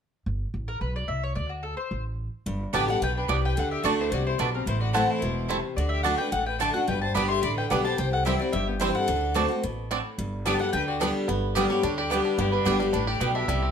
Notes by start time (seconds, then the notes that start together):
0.26 G1
0.54 A1
0.68 A#4
0.81 B1 B4
0.96 D5
1.08 C2 E5
1.23 C#5
1.35 D2 D5
1.49 F#4
1.63 A4
1.77 C5
1.91 A1
2.46 G1 G2
2.73 A1 D3 G3 B3 D4 G4 D5 G5 A5
2.88 B3 G4 A4 F#5
3.02 B1 B2 B4 G5
3.17 D4 B4
3.28 C2 C3 G3 B3 D4 G4 D5 G5
3.44 B4 G5
3.57 D2 D3 A4 F#5
3.71 G4 E5
3.84 D2 D3 A3 D4 F#4 D5 A5
3.98 E4 C5
4.12 C2 C3 F#4 D5
4.26 E4 C5
4.38 B1 B2 A3 D4 F#4 B4 D5 A5
4.54 C4 A#4
4.66 A1 A2 E4 C5
4.81 F#4 D5
4.93 E3 A3 C4 E4 A4 C5 F#5 A5
5.08 E4 C5
5.22 E1 B2
5.48 C3 A3 C4 E4 C5 A5
5.76 D2 D3 F#4 D5
5.89 G4 E5
6.03 D3 A3 D4 F#4 A4 D5 F#5 A5
6.18 D4 F#4 B4 G5
6.32 A1 A2 A4 F#5
6.46 B4 G5
6.59 D3 A3 D4 F#4 D5 A5
6.73 D4 F#4 A4 F#5
6.88 G1 G2 B4 G5
7.02 C5 A5
7.14 G1 D3 G3 B3 D4 G4 D5 G5 B5
7.29 E5 C6
7.42 A1 D3 D5 B5
7.56 B4 G5
7.69 B1 D3 G3 B3 D4 G4 B4 D5 F#5 G5
7.83 B3 G4 C5 A5
7.98 C2 C3 C5 G5
8.12 A4 F#5
8.25 E3 G3 C4 E4 G4 C5 E5 G5
8.39 C4 E4 F#4 D5
8.52 G1 G2 G4 E5
8.67 B3 G4
8.80 E3 G3 C4 E4 C5 G5
8.95 C4 E4 A4 F#5
9.08 D2 D3
9.34 D3 A3 C4 D4 F#4 D5 A5
9.48 C4 F#4
9.63 A1 B2
9.91 A2 A3 C4 D4 F#4 D5 A5
10.18 G1 G2
10.45 D3 G3 B3 D4 G4 D5 G5 A5
10.59 B3 G4 A4 F#5
10.73 D2 D3 B4 G5
10.88 F#4 D5
11.00 D3 G3 B3 D4 G4 D5 G5
11.28 G1 G2 B3
11.55 D3 G3 B3 D4 G4 A#4 D5 G5
11.70 G3 B3 G4 C#5
11.83 D2 D3 D4
11.97 G4 D5
12.10 D3 G3 B3 G4 D5 G5
12.25 D4
12.38 G1 G2 B3 G4 D5
12.52 G3 D4 B4
12.65 G1 D3 G3 B3 G4 D5 G5
12.80 G3 B3 G4
12.93 A1 A2 D4 B4
13.07 G4 D5
13.20 B1 B2 B3 G4 D5 G5
13.35 D4 G4 E5
13.48 C2 C3 G3
13.62 C4